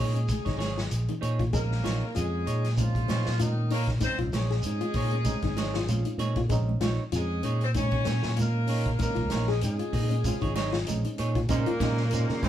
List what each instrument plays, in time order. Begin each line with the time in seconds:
Already playing: fingered electric bass A#2, horn section G#3 G#4, clean electric guitar C4 D#4 G#4 C#5
0.14 nylon-string guitar C#4, closed hi-hat
0.28 kick, closed hi-hat, high conga, shekere
0.45 fingered electric bass G#1, nylon-string guitar D#4, clean electric guitar D#4 G#4 C#5, kick, snare, closed hi-hat
0.58 clean electric guitar C4 G#4 C#5, snare, closed hi-hat, high conga, shekere
0.78 nylon-string guitar F4, snare
0.91 fingered electric bass A#1, closed hi-hat, shekere
1.08 nylon-string guitar D#4, closed hi-hat, low conga
1.21 fingered electric bass A#2, clean electric guitar C4 D#4 G#4 C#5, closed hi-hat, shekere
1.39 nylon-string guitar F4, kick, closed hi-hat, low conga
1.53 fingered electric bass A#1, reed electric piano G#3 C4 C#4 D#4, horn section A#3 A#4, nylon-string guitar G#4, kick, closed hi-hat, shekere
1.72 snare
1.83 fingered electric bass A#1, clean electric guitar C4 D#4 G#4 C#5, nylon-string guitar F4, snare, closed hi-hat, high conga, shekere
2.13 fingered electric bass F2, reed electric piano G#3 C4 C#4 F4, horn section G#3 G#4, nylon-string guitar F4, closed hi-hat, shekere
2.46 fingered electric bass A#2, clean electric guitar D#4 C#5, muted clean electric guitar stroke, closed hi-hat, shekere
2.64 snare, closed hi-hat
2.76 horn section F3 F4, reed electric piano G#3 C4 C#4 D#4, nylon-string guitar D#4, kick, closed hi-hat, high conga, shekere
2.95 kick, closed hi-hat
3.08 fingered electric bass A#2, nylon-string guitar C4, clean electric guitar C4 D#4 G#4 C#5, snare, closed hi-hat, high conga, shekere
3.26 fingered electric bass A#2, snare
3.39 horn section D#3 D#4, reed electric piano G#3 C4 C#4 D#4, nylon-string guitar F4, closed hi-hat, high conga, shekere
3.70 horn section A#3 A#4, clean electric guitar C4 D#4 G#4 C#5, nylon-string guitar D#4, open hi-hat, shekere
3.88 kick, snare, closed hi-hat
4.00 reed electric piano G#3 C4 C#4 D#4, horn section C4 C5, nylon-string guitar D#4, muted fingered electric bass stroke, kick, snare, closed hi-hat, shekere
4.18 fingered electric bass C#2, nylon-string guitar F4, kick, closed hi-hat
4.32 fingered electric bass A#1, horn section G#3 G#4, clean electric guitar C4 C#5, muted clean electric guitar stroke, snare, closed hi-hat, high conga, shekere
4.50 nylon-string guitar G#4, snare
4.62 fingered electric bass G#2, reed electric piano G#3 C4 C#4, closed hi-hat, shekere
4.67 reed electric piano D#4
4.81 nylon-string guitar F4, closed hi-hat, high conga
4.94 fingered electric bass A#2, clean electric guitar C4 D#4 C#5, kick, open hi-hat, shekere
5.11 nylon-string guitar C#4, closed hi-hat
5.24 reed electric piano G#3 C4 C#4 D#4, kick, closed hi-hat, high conga, shekere
5.42 fingered electric bass G#1, nylon-string guitar D#4, kick, snare, closed hi-hat
5.57 clean electric guitar C4 D#4 G#4 C#5, snare, closed hi-hat, high conga, shekere
5.74 nylon-string guitar F4, snare
5.87 fingered electric bass A#1, reed electric piano G#3 C4 C#4 F4, closed hi-hat, high conga, shekere
6.05 nylon-string guitar D#4, closed hi-hat
6.18 fingered electric bass A#2, clean electric guitar C4 D#4 G#4 C#5, closed hi-hat, high conga, shekere
6.36 nylon-string guitar F4, kick, closed hi-hat
6.49 fingered electric bass A#1, reed electric piano G#3 C4 C#4 D#4, nylon-string guitar G#4, kick, closed hi-hat, shekere
6.69 high conga
6.81 fingered electric bass A#1, clean electric guitar C4 D#4 C#5, nylon-string guitar F4, snare, closed hi-hat, high conga, shekere
7.12 fingered electric bass F2, reed electric piano G#3 C4 C#4, horn section G#3 G#4, nylon-string guitar F4, closed hi-hat, shekere
7.16 reed electric piano D#4
7.43 fingered electric bass A#2, clean electric guitar C4 D#4 G#4 C#5, nylon-string guitar C#4, closed hi-hat, shekere
7.61 horn section C4 C5, closed hi-hat
7.74 reed electric piano G#3 C4 C#4, horn section C#4 C#5, nylon-string guitar D#4, kick, closed hi-hat, high conga, shekere
7.78 reed electric piano D#4
7.91 clean electric guitar D#4 G#4 C#5, kick, closed hi-hat
8.04 fingered electric bass A#2, clean electric guitar C4 G#4 C#5, nylon-string guitar C#4, snare, closed hi-hat, high conga
8.09 shekere
8.23 fingered electric bass A#2, snare
8.36 reed electric piano G#3 C4 C#4, horn section A#3 A#4, nylon-string guitar F4, closed hi-hat, high conga, shekere
8.40 reed electric piano D#4
8.67 nylon-string guitar C#4, clean electric guitar D#4 G#4 C#5, muted clean electric guitar stroke, open hi-hat, shekere
8.86 kick, closed hi-hat
8.99 reed electric piano G#3 C4 C#4 D#4, horn section A#3 A#4, muted nylon-string guitar stroke, kick, closed hi-hat, shekere
9.15 fingered electric bass C#2, nylon-string guitar F4, kick, closed hi-hat
9.30 fingered electric bass A#1, clean electric guitar C4 D#4 G#4 C#5, snare, closed hi-hat, high conga, shekere
9.48 horn section G#3 G#4, nylon-string guitar G#4, snare
9.61 fingered electric bass G#2, reed electric piano G#3 C4 C#4 D#4, horn section G#3 G#4, closed hi-hat, shekere
9.79 nylon-string guitar F4, closed hi-hat
9.93 fingered electric bass A#2, clean electric guitar C4 D#4 G#4, muted clean electric guitar stroke, kick, open hi-hat, shekere
10.10 nylon-string guitar C#4, closed hi-hat
10.24 reed electric piano G#3 C4 C#4 F4, kick, closed hi-hat, high conga, shekere
10.41 fingered electric bass G#1, nylon-string guitar D#4, clean electric guitar D#4 G#4 C#5, kick, closed hi-hat
10.55 clean electric guitar C4 D#4 G#4 C#5, snare, closed hi-hat, high conga, shekere
10.73 nylon-string guitar F4, snare
10.87 fingered electric bass A#1, reed electric piano G#3 C4 C#4 D#4, closed hi-hat, high conga, shekere
11.04 nylon-string guitar D#4, closed hi-hat
11.18 fingered electric bass A#2, clean electric guitar C4 D#4 G#4 C#5, closed hi-hat, shekere
11.35 nylon-string guitar F4, kick, closed hi-hat
11.48 fingered electric bass A#2, baritone saxophone A#2, reed electric piano G#3 C4 C#4 D#4, tenor saxophone A#3, horn section A#3 A#4, nylon-string guitar C#4, clean electric guitar C#4 D#4 G#4 C5, kick, closed hi-hat, high conga, shekere
11.66 nylon-string guitar F4, muted fingered electric bass stroke, closed hi-hat
11.80 fingered electric bass A#2, reed electric piano G#3 C4 C#4 D#4, clean electric guitar C#4 D#4 G#4 C5, nylon-string guitar D#4, kick, snare, closed hi-hat, high conga, shekere
11.97 snare
12.11 clean electric guitar C#4 D#4 G#4 C5, closed hi-hat, high conga, shekere
12.29 fingered electric bass C#3, nylon-string guitar C#4, snare
12.42 fingered electric bass G#2, baritone saxophone C#3, clean electric guitar C#4 D#4 G#4 C5, tenor saxophone C#4, horn section C#4 C#5, kick, open hi-hat, high conga, low conga, shekere